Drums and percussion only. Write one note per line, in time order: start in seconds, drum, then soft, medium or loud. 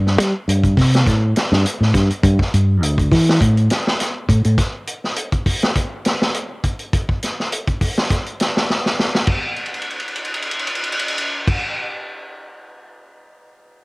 0.07 snare soft
0.20 snare soft
0.20 closed hi-hat medium
0.49 closed hi-hat medium
0.63 kick medium
0.63 closed hi-hat soft
0.77 kick medium
0.77 snare soft
0.77 open hi-hat medium
0.94 snare medium
0.94 closed hi-hat soft
1.06 kick medium
1.06 snare soft
1.06 closed hi-hat medium
1.36 snare medium
1.36 closed hi-hat medium
1.53 snare medium
1.66 closed hi-hat medium
1.82 snare soft
1.94 kick medium
1.94 snare soft
1.94 closed hi-hat medium
2.10 closed hi-hat soft
2.23 kick loud
2.23 closed hi-hat medium
2.39 kick medium
2.39 snare soft
2.54 closed hi-hat medium
2.83 closed hi-hat medium
2.98 kick medium
2.98 closed hi-hat soft
3.12 kick medium
3.12 snare soft
3.12 open hi-hat medium
3.29 snare medium
3.41 kick medium
3.41 closed hi-hat medium
3.57 closed hi-hat soft
3.70 snare medium
3.70 closed hi-hat medium
3.87 snare medium
4.00 snare soft
4.00 closed hi-hat medium
4.29 kick medium
4.29 closed hi-hat medium
4.45 closed hi-hat soft
4.58 kick medium
4.58 snare soft
4.58 closed hi-hat medium
4.87 closed hi-hat medium
5.04 snare soft
5.16 closed hi-hat medium
5.32 kick medium
5.32 closed hi-hat soft
5.46 kick medium
5.46 open hi-hat medium
5.62 snare medium
5.62 closed hi-hat soft
5.75 kick medium
5.75 closed hi-hat medium
6.05 snare medium
6.05 closed hi-hat medium
6.22 snare medium
6.34 closed hi-hat medium
6.64 kick medium
6.64 closed hi-hat soft
6.79 closed hi-hat soft
6.93 kick loud
6.93 closed hi-hat medium
7.09 kick medium
7.22 snare soft
7.22 closed hi-hat medium
7.40 snare soft
7.52 closed hi-hat medium
7.67 kick medium
7.67 closed hi-hat soft
7.81 kick medium
7.81 open hi-hat medium
7.98 snare medium
8.10 kick medium
8.10 snare soft
8.10 closed hi-hat medium
8.26 closed hi-hat soft
8.40 snare medium
8.40 closed hi-hat medium
8.57 snare medium
8.70 snare medium
8.86 snare medium
8.99 snare medium
9.15 snare medium
9.27 kick loud
9.27 crash medium
9.56 crash soft
9.66 ride soft
9.74 crash soft
9.82 ride medium
9.90 crash soft
10.00 ride soft
10.08 crash soft
10.16 ride medium
10.25 crash medium
10.34 ride medium
10.42 crash medium
10.51 ride medium
10.59 crash medium
10.67 ride medium
10.75 crash medium
10.84 ride medium
10.92 crash medium
10.99 ride medium
11.08 crash medium
11.18 ride medium
11.48 kick loud
11.48 crash medium